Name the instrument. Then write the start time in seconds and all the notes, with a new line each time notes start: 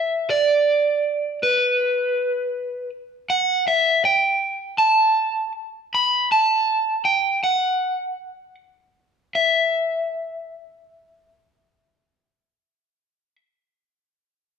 overdriven electric guitar
Already playing: E5
0.30 D5
1.43 B4
3.30 F#5
3.68 E5
4.05 G5
4.78 A5
5.95 B5
6.32 A5
7.05 G5
7.44 F#5
9.35 E5